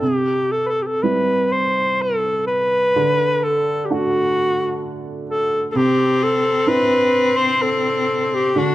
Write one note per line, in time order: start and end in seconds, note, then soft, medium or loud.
0.00 2.93 C3 medium
0.00 0.53 G4 medium
0.52 0.68 A4 medium
0.66 0.84 A4 medium
0.66 0.69 B4 soft
0.83 0.88 G4 soft
0.87 1.04 A4 medium
1.03 2.93 G3 soft
1.03 2.93 C4 soft
1.03 2.93 E4 soft
1.03 1.54 B4 medium
1.52 2.03 C5 medium
2.02 2.46 A4 medium
2.47 3.45 B4 medium
2.96 5.71 D3 medium
3.44 3.87 A4 medium
3.85 3.94 G4 soft
3.90 5.72 A3 soft
3.90 5.71 D4 soft
3.90 5.72 F#4 soft
3.90 5.05 F#4 medium
5.30 5.67 A4 medium
5.71 8.53 C3 medium
5.71 8.53 C4 medium
5.71 5.78 A4 medium
5.77 6.24 G4 medium
6.23 6.70 A4 medium
6.67 8.53 C4 soft
6.67 8.53 D4 soft
6.67 8.54 E4 medium
6.67 7.38 B4 medium
7.37 7.63 C5 medium
7.62 8.36 A4 medium
8.34 8.59 G4 medium
8.56 8.75 D3 medium
8.56 8.75 D4 medium
8.56 8.75 F#4 medium